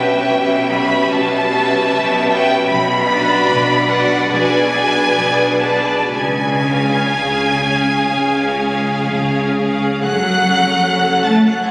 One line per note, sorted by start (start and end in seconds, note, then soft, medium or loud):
0.00 0.20 B1 medium
0.00 0.19 B2 medium
0.00 0.68 C#4 medium
0.00 0.68 G4 medium
0.00 0.68 B4 medium
0.00 0.68 E5 medium
0.00 0.68 G5 medium
0.29 1.01 B1 medium
0.29 1.01 B2 medium
0.69 1.49 C#4 medium
0.69 1.49 G4 medium
0.69 1.50 B4 medium
0.69 1.49 E5 medium
0.69 1.11 B5 loud
1.10 1.82 B1 medium
1.10 1.81 B2 medium
1.10 2.30 A5 loud
1.50 2.28 C#4 medium
1.50 2.28 G4 medium
1.50 2.28 B4 medium
1.50 2.28 E5 medium
1.91 2.59 B1 medium
1.91 2.60 B2 medium
2.29 2.68 C#4 medium
2.29 2.68 G4 medium
2.29 2.68 B4 medium
2.29 2.68 E5 medium
2.29 2.68 G5 loud
2.69 3.39 B1 loud
2.69 3.39 B2 loud
2.69 3.87 B5 loud
3.07 3.87 D4 medium
3.07 3.87 F#4 medium
3.07 3.87 B4 medium
3.07 3.88 D5 medium
3.49 4.21 B1 loud
3.49 4.20 B2 medium
3.89 4.28 D4 medium
3.89 4.29 F#4 medium
3.89 4.29 B4 medium
3.89 4.29 D5 medium
3.89 4.30 F#5 loud
4.29 5.06 B1 medium
4.29 5.06 B2 medium
4.29 4.70 D4 medium
4.29 4.70 G#4 medium
4.29 4.71 B4 medium
4.29 4.71 D5 medium
4.29 5.63 G#5 loud
4.71 5.60 D4 medium
4.71 5.61 G#4 medium
4.71 5.61 B4 medium
4.71 5.61 D5 medium
5.16 6.01 B1 loud
5.16 6.01 B2 medium
5.62 6.11 D4 medium
5.62 6.11 G#4 medium
5.62 6.11 B4 medium
5.62 6.11 D5 medium
5.62 6.12 A5 loud
6.11 7.00 C#2 medium
6.11 7.00 C#3 medium
6.11 9.53 G#5 loud
6.62 7.60 C#4 medium
6.62 7.60 G#4 medium
6.62 7.60 F5 medium
7.12 8.00 C#2 medium
7.12 8.00 C#3 medium
7.61 8.58 C#4 medium
7.61 8.58 G#4 medium
7.61 8.59 G#4 medium
7.61 8.59 F5 medium
8.11 8.97 C#2 medium
8.11 8.97 C#3 medium
8.60 9.55 C#4 medium
8.60 9.55 G#4 medium
8.60 9.55 F5 medium
9.08 9.92 C#2 medium
9.08 9.92 C#3 medium
9.57 10.02 C#4 medium
9.57 10.02 G#4 medium
9.57 10.03 G#4 medium
9.57 10.03 F5 medium
10.03 11.71 F#1 medium
10.03 11.21 F#3 medium
10.03 11.71 C#4 medium
10.03 11.71 A4 medium
10.03 11.22 F#5 loud
10.03 11.21 F#6 loud
11.24 11.45 A3 loud
11.24 11.45 A5 medium
11.24 11.45 A6 medium
11.45 11.66 F#3 medium
11.45 11.66 F#5 medium
11.45 11.66 F#6 medium
11.65 11.71 G#3 medium
11.65 11.71 G#5 medium
11.65 11.71 G#6 loud